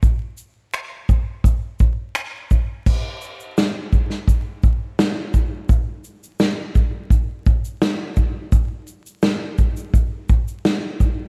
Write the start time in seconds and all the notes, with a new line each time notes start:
0.03 kick, shaker
0.37 shaker
0.73 finger snap, shaker
1.09 kick, shaker
1.44 kick, shaker
1.79 kick, shaker
2.15 finger snap, shaker
2.51 kick, shaker
2.86 kick, crash
3.21 shaker
3.40 shaker
3.58 snare, shaker
3.93 kick, shaker
4.10 snare
4.28 kick, shaker
4.63 kick, shaker
4.99 snare, shaker
5.34 kick, shaker
5.69 kick, shaker
6.04 shaker
6.23 shaker
6.40 snare, shaker
6.75 kick, shaker
7.10 kick, shaker
7.46 kick, shaker
7.65 shaker
7.82 snare, shaker
8.16 kick, shaker
8.52 kick, shaker
8.87 shaker
9.06 shaker
9.22 snare, shaker
9.58 kick, shaker
9.77 shaker
9.94 kick, shaker
10.29 kick, shaker
10.48 shaker
10.65 snare, shaker
11.00 kick, shaker